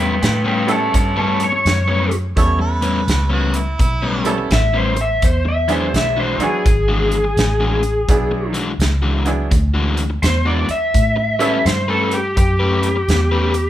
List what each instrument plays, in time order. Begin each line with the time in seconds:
Already playing: fingered electric bass E2, overdriven electric guitar A2 G3 B3 C#4
0.00 lead electric guitar B4 G5
0.23 fingered electric bass A2, lead electric guitar B4 G5, snare, closed hi-hat
0.45 overdriven electric guitar A2 G3 B3 C#4, lead electric guitar B4 G5
0.67 upright piano G3 B3 C#4 E4 A4, closed hi-hat
0.71 lead electric guitar C#5 A5
0.94 fingered electric bass G2, lead electric guitar C#5 A5, muted overdriven electric guitar stroke, kick, closed hi-hat
1.16 overdriven electric guitar A2 G3 B3 C#4, lead electric guitar C#5 A5
1.40 lead electric guitar C#5, closed hi-hat
1.52 muted overdriven electric guitar stroke
1.65 fingered electric bass F#2, snare, closed hi-hat
1.88 overdriven electric guitar A2 G3 B3 C#4
2.10 muted overdriven electric guitar stroke, closed hi-hat
2.36 fingered electric bass E2, upright piano G3 B3 C#4 E4 A4, harmonica C#5, kick, closed hi-hat
2.59 harmonica B4, muted overdriven electric guitar stroke
2.81 overdriven electric guitar A2 G3 B3 C#4, closed hi-hat
3.08 fingered electric bass C#2, snare, closed hi-hat
3.30 overdriven electric guitar A2 G3 B3 C#4, harmonica F#4
3.54 harmonica E4, closed hi-hat
3.79 fingered electric bass B1, harmonica E4, muted overdriven electric guitar stroke, kick, closed hi-hat
4.02 overdriven electric guitar A2 G3 B3 C#4
4.25 upright piano G3 B3 C#4 E4 A4, closed hi-hat
4.38 muted overdriven electric guitar stroke
4.51 fingered electric bass A1, lead electric guitar E5, kick, snare, closed hi-hat
4.74 overdriven electric guitar A2 G3 B3 C#4, lead electric guitar C5
4.96 muted overdriven electric guitar stroke, closed hi-hat
5.01 lead electric guitar E5
5.22 fingered electric bass E2, lead electric guitar C5, kick, closed hi-hat
5.45 lead electric guitar E5, muted overdriven electric guitar stroke
5.68 overdriven electric guitar E3 G#3 D4 F#4, upright piano F#3 B3 D4 E4 G#4, closed hi-hat
5.72 lead electric guitar C5
5.94 fingered electric bass B1, lead electric guitar E5, snare, closed hi-hat
6.17 overdriven electric guitar E3 G#3 D4 F#4, lead electric guitar C5
6.39 upright piano F#3 B3 D4 E4 F#4, lead electric guitar G#4, muted fingered electric bass stroke, closed hi-hat
6.66 fingered electric bass G#1, muted overdriven electric guitar stroke, kick, closed hi-hat
6.88 overdriven electric guitar E3 G#3 D4 F#4
7.11 closed hi-hat
7.24 muted overdriven electric guitar stroke
7.37 fingered electric bass A1, snare, closed hi-hat
7.60 overdriven electric guitar E3 G#3 D4 F#4
7.82 muted overdriven electric guitar stroke, closed hi-hat
8.08 fingered electric bass B1, upright piano F#3 B3 D4 E4 G#4, kick, closed hi-hat
8.31 muted overdriven electric guitar stroke
8.53 overdriven electric guitar E3 G#3 D4 F#4, closed hi-hat
8.79 fingered electric bass C#2, snare, closed hi-hat
9.02 overdriven electric guitar E3 G#3 D4 F#4
9.25 upright piano F#3 B3 D4 E4 G#4, closed hi-hat
9.51 fingered electric bass D2, muted overdriven electric guitar stroke, kick, closed hi-hat
9.74 overdriven electric guitar E3 G#3 D4 F#4
9.97 closed hi-hat
10.10 muted overdriven electric guitar stroke
10.23 fingered electric bass E2, lead electric guitar C5, snare, closed hi-hat
10.45 overdriven electric guitar E3 G#3 D4 F#4, lead electric guitar D5
10.68 lead electric guitar E5, muted overdriven electric guitar stroke, muted fingered electric bass stroke, closed hi-hat
10.94 fingered electric bass A2, kick, closed hi-hat
11.16 muted overdriven electric guitar stroke
11.39 upright piano G3 B3 C#4 E4 A4, overdriven electric guitar A3 C#4 G4 B4, closed hi-hat
11.65 fingered electric bass G2, lead electric guitar C5, snare, closed hi-hat
11.88 overdriven electric guitar A3 C#4 G4 B4, lead electric guitar A4
12.11 lead electric guitar G4, closed hi-hat
12.37 fingered electric bass F#2, lead electric guitar G4, muted overdriven electric guitar stroke, kick, closed hi-hat
12.60 overdriven electric guitar A3 C#4 G4 B4
12.83 closed hi-hat
12.96 muted overdriven electric guitar stroke
13.08 fingered electric bass E2, snare, closed hi-hat
13.32 overdriven electric guitar A3 C#4 G4 B4
13.54 muted overdriven electric guitar stroke, closed hi-hat